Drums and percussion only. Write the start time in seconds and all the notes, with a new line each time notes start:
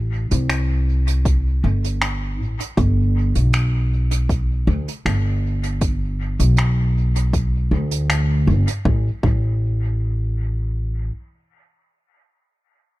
0.31 closed hi-hat
0.49 finger snap, closed hi-hat
1.07 closed hi-hat
1.25 kick, closed hi-hat
1.85 closed hi-hat
2.02 finger snap, closed hi-hat
2.60 closed hi-hat
2.77 kick, closed hi-hat
3.35 closed hi-hat
3.53 finger snap, closed hi-hat
4.11 closed hi-hat
4.29 kick, closed hi-hat
4.88 closed hi-hat
5.06 finger snap, closed hi-hat
5.64 closed hi-hat
5.81 kick, closed hi-hat
6.40 closed hi-hat
6.57 finger snap, closed hi-hat
7.16 closed hi-hat
7.33 kick, closed hi-hat
7.91 closed hi-hat
8.10 finger snap, closed hi-hat
8.68 closed hi-hat
8.85 kick
9.23 kick